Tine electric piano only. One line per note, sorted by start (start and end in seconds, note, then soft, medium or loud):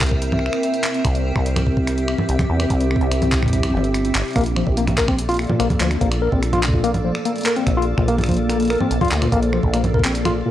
4.36 4.43 A#3 loud
4.56 4.63 F3 medium
4.77 4.84 A#3 medium
4.98 5.05 A#4 medium
5.08 5.15 C4 medium
5.29 5.36 F4 loud
5.49 5.59 A#2 medium
5.60 5.67 A#3 loud
5.80 5.87 F3 medium
6.01 6.08 A#3 medium
6.22 6.29 A#4 medium
6.32 6.39 C4 medium
6.53 6.60 F4 loud
6.74 6.83 A#2 medium
6.84 6.91 A#3 loud
7.05 7.12 F3 medium
7.25 7.32 A#3 medium
7.46 7.53 A#4 medium
7.56 7.63 C4 medium
7.77 7.84 F4 loud
7.98 8.08 A#2 medium
8.08 8.15 A#3 loud
8.29 8.36 F3 medium
8.49 8.56 A#3 medium
8.70 8.77 A#4 medium
8.81 8.87 C4 medium
9.01 9.08 F4 loud
9.22 9.32 A#2 medium
9.32 9.39 A#3 loud
9.53 9.60 F3 medium
9.74 9.81 A#3 medium
9.94 10.01 A#4 medium
10.05 10.12 C4 medium
10.25 10.32 F4 loud
10.46 10.51 A#2 medium